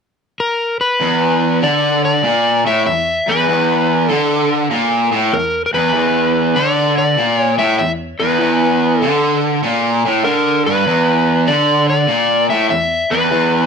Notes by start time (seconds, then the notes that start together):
0.40 A#4
0.81 B4
1.01 E2
1.62 D3 D5
2.05 D5
2.24 A#2
2.66 A2 E5
2.86 E2 E5
3.28 E2 B4
3.48 E2
4.09 D3 A4
4.71 A#2
5.12 A2
5.32 E2 A#4
5.66 A#4
5.74 E2 B4
5.93 E2
6.55 D3 D5
6.98 D5
7.18 A#2
7.39 C#5
7.59 A2 E5
7.79 E2 E5
8.20 E2 B4
8.40 E2
9.02 D3 A4
9.64 A#2
10.06 A2
10.24 D3 A#4
10.66 G2 B4
10.87 E2
11.47 D3 D5
11.90 D5
12.08 A#2
12.50 A2 E5
12.70 E2 E5
13.11 E2 B4
13.31 E2